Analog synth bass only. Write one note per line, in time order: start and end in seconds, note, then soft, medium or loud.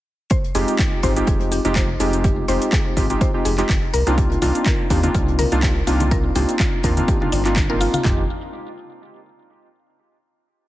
0.55 0.64 F1 loud
1.03 1.21 G#1 loud
1.27 1.59 F1 medium
1.65 1.95 F1 loud
2.00 2.44 F1 medium
2.48 2.58 F1 loud
2.97 3.15 G#1 loud
3.45 3.63 F1 loud
3.69 3.79 F1 loud
3.94 4.03 C2 loud
4.07 4.37 C2 medium
4.42 4.52 C2 loud
4.90 5.08 D#2 loud
5.15 5.46 C2 medium
5.52 5.82 C2 loud
5.87 6.31 C2 medium
6.35 6.45 C2 loud
6.84 7.02 D#2 loud
7.32 7.88 G1 medium
8.05 8.27 F1 loud